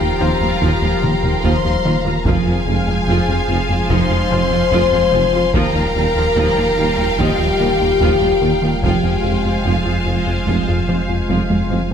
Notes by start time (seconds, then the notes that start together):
Already playing: D#1 F3 F4 G4 A#4 F5 G5 A#5
0.00 D#2 F3 D#4 F4
0.20 D#2 F3 C4 D#4 F4 C5
0.41 D#2 F3 G3 F4
0.60 D#2 D#3 F3 F4 G4 G5, taiko
0.82 D#2 F3 G3 F4
1.02 D#2 D#3 F3 A#3 F4, taiko mid
1.23 D#2 F3 D#4 F4, taiko mid
1.43 D#2 D#3 F3 F4 C5 C6, taiko
1.64 D#2 F3 G3 F4
1.85 D#2 D#3 F3 A#3 F4
2.05 D#2 D#3 F3 A#3 F4 A#4 A#5
2.25 F1 F2 F3 F4 G#4 A#4 C5 F5 G#5, taiko
2.46 F2 F3 F4
2.66 F1 F2 F3 G#3 F4
2.87 F2 F3 G#3 F4
3.08 F1 F2 F3 F4
3.29 F2 F3 F4
3.48 F1 F2 F3 F4
3.69 F2 F3 G#3 F4
3.89 F1 F2 F3 D#4 F4 C5 D#5 C6, taiko
4.10 F2 F3 G#3 F4
4.31 F1 F2 F3 C4 F4 C5
4.50 F2 F3 F4
4.71 F1 F2 F3 F4, taiko
4.92 F2 F3 G#3 F4
5.12 F1 F2 F3 C4 F4
5.33 F2 F3 C4 F4
5.53 D#1 D#2 D#3 F3 G3 F4 A#4 F5 G5 A#5, taiko
5.74 D#2 F3 D#4 F4
5.95 D#2 F3 G3 F4
6.15 D#2 F3 G3 F4
6.36 D#2 D#3 F3 F4
6.57 D#2 F3 D#4 F4
6.77 D#2 F3 D#4 F4
6.98 D#2 F3 G3 F4
7.18 D#2 D#3 F3 F4 G4 D#5 G5, taiko
7.39 D#2 F3 G3 F4
7.59 D#2 D#3 F3 A#3 F4
7.80 D#2 F3 D#4 F4
8.00 D#2 D#3 F3 F4, taiko
8.21 D#2 F3 G3 F4
8.41 D#2 D#3 F3 A#3 F4
8.62 D#2 D#3 F3 A#3 F4
8.82 F1 F2 F3 G#3 F4 G4 C5 F5 G5 G#5, taiko
9.03 F2 F3 F4
9.24 F1 F2 F3 G#3 F4
9.44 F2 F3 G#3 F4
9.64 F1 F2 F3 F4 F5
9.85 F2 F3 F4
10.06 F1 F2 F3 F4
10.26 F2 F3 G#3 F4
10.46 F1 F2 F3 F4, taiko
10.67 F2 F3 G#3 F4
10.88 F1 F2 F3 C4 F4
11.09 F2 F3 F4
11.29 F1 F2 F3 F4, taiko high
11.50 F2 F3 G#3 F4, taiko high
11.70 F1 F2 F3 C4 F4, taiko high